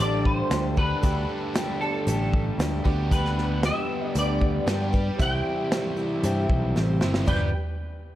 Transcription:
0.00 0.41 A1 medium
0.00 0.79 D3 medium
0.00 1.02 D3 medium
0.00 0.78 G3 medium
0.00 7.25 G3 medium
0.00 0.50 G3 medium
0.00 2.83 A3 medium
0.00 0.78 D4 medium
0.00 5.18 D4 medium
0.00 0.51 D4 medium
0.00 0.99 G4 medium
0.00 0.52 G4 medium
0.00 0.76 A4 loud
0.00 0.99 A4 medium
0.00 1.03 A4 medium
0.00 0.52 A4 medium
0.00 0.26 D5 loud
0.00 1.00 D5 medium
0.25 0.78 C5 medium
0.25 kick medium
0.51 0.93 D2 loud
0.51 0.77 G3 medium
0.51 0.78 D4 medium
0.51 0.77 G4 medium
0.51 0.75 A4 medium
0.51 snare loud
0.51 closed hi-hat medium
0.77 1.03 D3 medium
0.77 1.04 G3 medium
0.77 1.03 D4 soft
0.77 1.03 G4 medium
0.77 1.03 A4 medium
0.77 1.85 B4 medium
0.77 kick medium
1.00 1.24 D2 loud
1.00 2.06 D3 medium
1.00 1.54 G3 medium
1.00 1.56 D4 medium
1.00 2.81 G4 medium
1.00 2.84 G4 medium
1.00 2.81 A4 medium
1.00 2.82 D5 medium
1.00 kick loud
1.00 closed hi-hat medium
1.04 1.56 G4 medium
1.04 1.56 A4 medium
1.54 1.81 G3 medium
1.54 1.82 D4 medium
1.54 1.82 G4 medium
1.54 1.80 A4 medium
1.54 snare loud
1.54 closed hi-hat medium
1.81 2.06 D4 soft
1.81 2.07 G4 soft
1.81 2.81 A4 medium
1.81 2.07 A4 soft
2.07 2.50 A1 medium
2.07 2.59 D3 medium
2.07 2.59 G3 medium
2.07 2.59 D4 medium
2.07 2.61 G4 medium
2.07 2.60 A4 medium
2.07 closed hi-hat medium
2.33 kick medium
2.58 2.80 D2 loud
2.58 2.86 G3 medium
2.58 2.86 D4 medium
2.58 2.86 G4 medium
2.58 snare loud
2.58 closed hi-hat medium
2.63 2.84 A4 medium
2.82 3.70 D2 medium
2.82 4.65 D3 medium
2.82 4.67 G3 medium
2.82 5.17 B3 medium
2.82 4.66 B3 medium
2.82 4.37 G4 medium
2.82 5.17 B4 medium
2.82 4.38 B4 medium
2.82 3.11 B4 medium
2.82 4.39 D5 medium
2.82 kick medium
2.87 3.12 D4 soft
2.87 3.12 G4 medium
3.11 3.64 D3 medium
3.11 3.63 G3 medium
3.11 3.63 D4 medium
3.11 3.64 G4 medium
3.11 3.65 B4 medium
3.11 3.64 B4 medium
3.11 kick loud
3.11 closed hi-hat medium
3.25 snare soft
3.38 snare soft
3.63 4.15 G3 medium
3.63 4.15 D4 medium
3.63 4.16 G4 medium
3.63 4.16 B4 medium
3.63 4.07 E5 medium
3.63 snare loud
3.63 closed hi-hat medium
4.07 4.18 D5 medium
4.15 4.58 D2 medium
4.15 4.68 D3 medium
4.15 4.67 G3 medium
4.15 4.67 D4 medium
4.15 4.69 G4 medium
4.15 4.69 B4 medium
4.15 5.21 D5 loud
4.15 closed hi-hat medium
4.39 5.14 G4 soft
4.39 5.19 B4 soft
4.39 5.20 D5 medium
4.39 kick medium
4.66 5.09 G2 medium
4.66 4.92 D3 medium
4.66 4.94 G3 medium
4.66 4.93 B3 medium
4.66 4.94 D4 medium
4.66 4.93 G4 medium
4.66 4.92 B4 medium
4.66 snare loud
4.66 closed hi-hat medium
4.93 5.21 D4 medium
4.93 5.20 G4 medium
4.93 5.20 B4 medium
4.93 kick medium
5.16 5.41 C2 medium
5.16 7.25 E3 medium
5.16 7.26 C4 medium
5.16 6.96 G4 medium
5.16 7.26 G4 medium
5.16 6.97 C5 medium
5.16 6.98 E5 medium
5.16 kick loud
5.20 5.72 C3 medium
5.20 5.72 E3 medium
5.20 5.70 G3 medium
5.20 5.71 C4 medium
5.20 5.72 E4 medium
5.20 7.00 G4 loud
5.20 5.73 C5 medium
5.20 6.19 G5 loud
5.20 closed hi-hat medium
5.71 5.98 G3 medium
5.71 5.98 C4 medium
5.71 5.96 E4 medium
5.71 5.95 C5 medium
5.71 snare loud
5.71 closed hi-hat medium
5.97 6.23 G3 soft
5.97 6.24 C4 medium
5.97 6.24 E4 medium
5.97 6.23 C5 medium
6.19 6.73 F#5 loud
6.24 6.45 G2 loud
6.24 6.76 C3 medium
6.24 6.76 E3 loud
6.24 6.75 G3 medium
6.24 6.75 C4 medium
6.24 6.76 E4 medium
6.24 6.77 C5 loud
6.24 closed hi-hat medium
6.50 6.73 B1 medium
6.50 kick medium
6.76 7.00 A1 medium
6.76 7.02 G3 medium
6.76 7.02 C4 medium
6.76 7.01 E4 medium
6.76 6.99 C5 medium
6.76 snare medium
7.00 7.26 G1 medium
7.00 7.27 C3 medium
7.00 7.27 E3 medium
7.00 7.25 G3 soft
7.00 7.27 C4 medium
7.00 7.28 E4 medium
7.00 7.26 G4 medium
7.00 7.27 C5 medium
7.00 7.28 C5 medium
7.00 7.28 E5 medium
7.00 snare medium
7.14 snare loud
7.26 7.52 G1 medium
7.26 7.48 G2 loud
7.26 7.48 D3 loud
7.26 7.48 G3 medium
7.26 7.52 G3 medium
7.26 7.49 B3 medium
7.26 7.52 B3 medium
7.26 7.48 D4 medium
7.26 7.52 D4 medium
7.26 7.52 G4 medium
7.26 7.49 G4 medium
7.26 7.52 B4 medium
7.26 7.49 B4 medium
7.26 7.52 D5 medium
7.26 7.52 G5 medium
7.26 kick loud
7.26 floor tom loud
7.26 crash medium

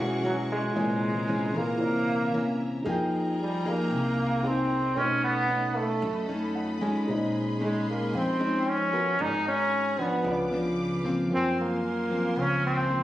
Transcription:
0.00 0.73 B2 medium
0.00 0.77 E3 loud
0.00 0.19 G#3 medium
0.00 0.19 C#4 medium
0.00 0.70 E4 soft
0.00 0.19 F#4 medium
0.00 0.71 G#4 soft
0.00 0.73 G#4 medium
0.00 0.72 C#5 medium
0.00 0.73 F#5 medium
0.00 0.73 C#6 medium
0.23 0.37 F#3 medium
0.23 0.58 G#3 medium
0.23 0.59 C#4 medium
0.23 0.59 F#4 medium
0.52 1.59 G#3 medium
0.72 1.78 A#2 medium
0.72 1.80 C3 loud
0.72 1.09 E3 medium
0.72 1.76 E4 medium
0.72 1.78 A#4 soft
0.72 2.84 A#4 medium
0.72 1.79 G#5 medium
0.72 2.84 A#5 medium
0.76 1.10 G#3 medium
0.76 1.79 C#5 soft
0.76 1.80 G#5 medium
1.28 1.50 E3 medium
1.28 1.50 G#3 medium
1.28 1.50 C#4 medium
1.55 2.29 E3 medium
1.55 2.29 A#3 medium
1.55 2.61 A#3 loud
1.77 2.82 C2 medium
1.77 2.56 A#2 medium
1.77 2.83 C3 medium
1.77 2.82 E4 medium
1.77 2.83 C5 soft
1.77 2.84 C#5 soft
1.77 2.85 E5 medium
1.83 2.85 A#5 medium
2.33 2.82 E3 medium
2.33 2.82 A#3 medium
2.33 2.82 C#4 medium
2.82 3.87 F2 medium
2.82 3.88 F3 medium
2.82 3.38 A#3 medium
2.82 4.39 D#4 medium
2.82 4.40 G#4 medium
2.82 4.95 G#4 medium
2.82 9.15 D#5 medium
2.82 4.95 G5 medium
2.82 4.95 A#5 medium
2.86 3.38 D#4 medium
2.86 3.38 G#4 medium
2.86 4.41 A#4 medium
2.86 4.42 G5 medium
3.42 3.69 G3 medium
3.65 4.40 A#3 medium
3.65 4.47 A#3 medium
3.65 4.40 D#4 medium
3.65 4.40 G#4 medium
3.90 4.96 C2 medium
3.90 4.94 C3 soft
4.42 4.78 A#3 medium
4.42 4.99 C4 medium
4.42 4.96 D#4 soft
4.42 4.78 D#4 medium
4.42 4.96 G#4 soft
4.42 4.78 G#4 medium
4.42 4.97 A#4 soft
4.42 4.97 G5 soft
4.94 5.98 B1 medium
4.94 5.99 B2 medium
4.94 5.45 A3 medium
4.94 7.02 C#4 medium
4.94 5.23 C#4 loud
4.94 5.45 C#4 medium
4.94 5.46 D#4 medium
4.94 7.03 A4 soft
4.94 7.05 A4 medium
4.94 9.15 B5 medium
4.98 7.04 B4 soft
4.98 7.05 D#5 medium
5.24 5.79 B3 loud
5.49 6.02 A3 medium
5.49 6.02 C#4 medium
5.49 6.02 D#4 medium
5.77 6.29 A3 medium
6.02 7.08 F#2 loud
6.02 7.05 F#3 medium
6.29 6.77 A3 medium
6.29 6.77 C#4 medium
6.29 6.78 D#4 medium
6.55 6.80 F#5 medium
6.81 7.60 G#3 medium
6.81 7.60 C#4 medium
6.81 7.60 D#4 medium
6.81 7.06 G#5 medium
7.05 8.09 A#1 medium
7.05 8.11 A#2 medium
7.05 9.14 D#4 medium
7.05 9.15 G#4 soft
7.05 9.17 G#4 medium
7.05 9.15 C5 medium
7.05 9.17 C6 medium
7.11 9.16 D#5 medium
7.61 8.36 G#3 medium
7.61 7.87 G#3 medium
7.61 8.36 C#4 medium
7.61 8.36 D#4 medium
7.90 8.17 A#3 medium
8.14 9.20 F2 medium
8.14 9.17 F3 soft
8.14 8.70 C4 loud
8.40 8.88 G#3 medium
8.40 8.89 C#4 medium
8.40 8.89 D#4 medium
8.69 9.23 C#4 loud
8.93 9.94 B3 medium
8.93 9.94 F#4 medium
8.93 9.94 A#4 medium
9.16 10.21 G#1 loud
9.16 9.98 G#3 medium
9.16 10.21 F#4 soft
9.16 10.22 A#4 soft
9.16 10.24 G#5 medium
9.21 9.47 D#4 loud
9.21 10.24 F#5 medium
9.21 10.24 G#5 medium
9.21 10.24 A#5 medium
9.48 10.02 C#4 loud
9.99 10.47 F3 medium
9.99 10.47 B3 medium
9.99 10.52 B3 medium
9.99 10.47 D4 medium
10.22 11.30 C#2 medium
10.22 11.28 C#3 medium
10.22 11.27 F4 soft
10.22 11.29 B4 medium
10.22 11.28 C#5 soft
10.22 11.29 D5 soft
10.22 13.03 F5 medium
10.22 11.29 D6 medium
10.28 11.30 B5 medium
10.52 11.00 F3 medium
10.52 11.00 B3 medium
10.52 11.00 D4 medium
11.04 11.79 F3 medium
11.04 11.79 A#3 medium
11.04 11.79 C4 medium
11.28 12.33 F#2 medium
11.28 12.32 F#2 loud
11.28 13.03 F4 medium
11.28 13.03 A#4 soft
11.28 13.03 A#4 medium
11.28 13.03 C5 soft
11.28 13.03 G#5 medium
11.28 13.03 C6 medium
11.34 11.57 C4 loud
11.34 13.03 G#5 medium
11.61 12.42 A#3 medium
12.10 12.85 F3 medium
12.10 12.85 A#3 medium
12.10 12.85 C4 medium
12.36 13.03 C#2 medium
12.36 13.03 C#3 medium
12.40 12.65 C#4 loud
12.67 13.03 C4 loud
12.90 13.03 F3 soft
12.90 13.03 A#3 medium
12.90 13.03 C4 medium

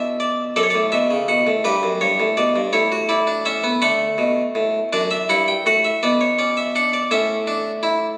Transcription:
0.00 0.53 B2 medium
0.00 0.53 D4 medium
0.20 0.43 D5 medium
0.56 0.74 F#2 medium
0.56 1.61 A4 medium
0.56 0.61 D5 medium
0.63 0.70 C#5 medium
0.70 0.84 D5 medium
0.75 0.92 A2 medium
0.92 1.10 B2 medium
0.92 1.15 E5 medium
1.11 1.28 C#3 medium
1.28 1.46 B2 medium
1.28 1.51 F#5 medium
1.47 1.64 A2 medium
1.64 1.82 G2 medium
1.64 2.70 G4 medium
1.64 1.87 B4 medium
1.83 2.00 F#2 medium
2.01 2.19 G2 medium
2.01 2.23 C#5 medium
2.20 2.37 A2 medium
2.37 2.55 B2 medium
2.37 2.60 D5 medium
2.56 2.73 G2 medium
2.73 3.79 A2 medium
2.73 2.91 E4 medium
2.73 2.95 C#5 medium
2.92 3.09 F#4 medium
3.09 3.27 E4 medium
3.09 3.32 D5 medium
3.27 3.45 D4 medium
3.46 3.63 C#4 medium
3.46 3.68 E5 medium
3.64 3.81 B3 medium
3.82 4.04 D3 medium
3.82 4.89 A3 medium
3.82 4.88 F#5 medium
4.18 4.41 B2 medium
4.55 4.78 A2 medium
4.93 5.15 F#2 medium
4.93 5.15 D4 loud
4.93 5.10 D5 medium
5.11 5.28 E5 medium
5.29 5.52 G2 medium
5.29 5.52 E4 medium
5.29 5.47 F#5 medium
5.48 5.65 G5 medium
5.66 5.88 A2 medium
5.66 5.89 F#4 medium
5.66 5.84 F#5 medium
5.84 6.02 E5 medium
6.03 7.08 B2 medium
6.03 6.25 B3 medium
6.03 6.20 D5 medium
6.21 6.38 C#5 medium
6.39 6.61 C#4 medium
6.39 6.56 D5 medium
6.57 6.74 E5 medium
6.75 6.98 D4 medium
6.75 6.93 F#5 medium
6.93 7.11 D5 medium
7.11 8.16 A2 medium
7.11 7.34 C#4 medium
7.11 8.16 E5 medium
7.47 7.70 D4 medium
7.83 8.05 E4 medium

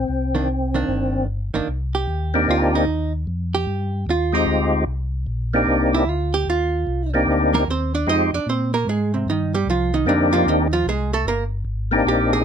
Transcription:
0.00 1.25 C4 medium
0.08 0.84 C2 medium
0.35 0.47 D#3 medium
0.35 0.47 A#3 soft
0.35 0.47 D4 medium
0.74 1.25 D#3 medium
0.74 1.26 A#3 medium
0.74 1.26 D4 medium
0.88 1.50 G1 medium
1.54 1.61 G1 soft
1.54 1.66 D#3 medium
1.54 1.67 A#3 medium
1.54 1.67 D4 medium
1.68 2.07 C2 medium
1.95 2.44 G4 medium
2.07 2.46 D#2 medium
2.34 2.85 A#3 medium
2.34 2.85 C4 medium
2.34 2.85 D4 medium
2.34 2.85 D#4 medium
2.34 2.86 G4 medium
2.48 2.87 D2 medium
2.48 2.75 F4 medium
2.75 3.12 D#4 medium
2.87 3.26 D#2 medium
3.27 3.66 F2 medium
3.55 4.04 G4 medium
3.67 4.06 G2 medium
4.07 4.46 D#2 medium
4.07 4.35 F4 medium
4.33 4.84 G#3 medium
4.33 4.84 C4 medium
4.33 4.85 D#4 medium
4.33 4.74 D#4 medium
4.33 4.85 F4 medium
4.33 4.85 G4 medium
4.46 4.86 D2 medium
4.87 5.26 C2 medium
5.27 5.66 A#1 medium
5.54 6.04 A#3 medium
5.54 6.05 C4 medium
5.54 6.05 D4 medium
5.54 6.05 D#4 medium
5.54 6.05 G4 medium
5.66 6.05 C2 medium
5.95 6.10 E4 medium
6.06 6.45 D2 medium
6.06 6.34 F4 medium
6.34 6.47 G4 medium
6.46 6.85 D#2 medium
6.46 7.11 F4 medium
6.87 7.26 C2 medium
7.14 7.64 A#3 medium
7.14 7.64 C4 medium
7.14 7.65 D4 medium
7.14 7.65 D#4 medium
7.14 7.65 G4 medium
7.27 7.66 D2 medium
7.54 7.67 A#3 medium
7.54 7.67 A#4 medium
7.67 8.06 D#2 medium
7.67 7.94 C4 medium
7.67 7.94 C5 medium
7.95 8.07 D4 medium
7.95 8.07 D5 medium
8.07 8.31 F2 medium
8.07 8.30 G#3 medium
8.07 8.31 C4 soft
8.07 8.31 D#4 soft
8.07 8.34 D#4 medium
8.07 8.31 F4 soft
8.07 8.31 G4 medium
8.07 8.34 D#5 medium
8.33 8.39 F2 soft
8.33 8.47 D4 medium
8.33 8.47 D5 medium
8.46 8.85 A#2 medium
8.46 8.73 C4 medium
8.46 8.73 C5 medium
8.74 8.87 A#3 medium
8.74 8.86 A#4 medium
8.86 9.25 G#2 medium
8.86 9.13 G#3 medium
8.86 9.13 G#4 medium
9.14 9.27 C3 soft
9.14 9.26 C4 soft
9.26 9.65 G2 medium
9.26 9.54 D#4 medium
9.30 9.54 D#3 soft
9.54 9.67 G3 medium
9.54 9.67 G4 medium
9.66 10.05 C2 medium
9.66 9.93 F3 medium
9.70 9.94 F4 medium
9.94 10.06 D#3 medium
9.94 10.06 D#4 medium
10.05 10.44 F2 medium
10.05 10.33 D3 medium
10.05 10.67 A#3 medium
10.05 10.67 C4 medium
10.05 10.67 D4 medium
10.05 10.33 D4 medium
10.05 10.68 D#4 medium
10.05 10.68 G4 medium
10.33 10.46 F3 medium
10.33 10.46 F4 medium
10.45 10.84 D#2 medium
10.45 10.73 D#3 medium
10.45 10.73 D#4 medium
10.73 10.86 F3 medium
10.73 10.86 F4 medium
10.86 11.24 C2 medium
10.86 11.13 G#3 medium
10.86 11.13 G#4 medium
11.13 11.26 A3 medium
11.13 11.26 A4 medium
11.25 11.64 G1 medium
11.25 11.43 A#4 medium
11.29 11.44 A#3 medium
11.65 12.04 G#1 medium
11.91 12.42 A#3 medium
11.91 12.42 C4 medium
11.91 12.43 D4 medium
11.91 12.43 D#4 medium
11.91 12.43 G4 medium
12.05 12.44 A#1 medium
12.05 12.32 G4 medium
12.33 12.45 G#4 medium

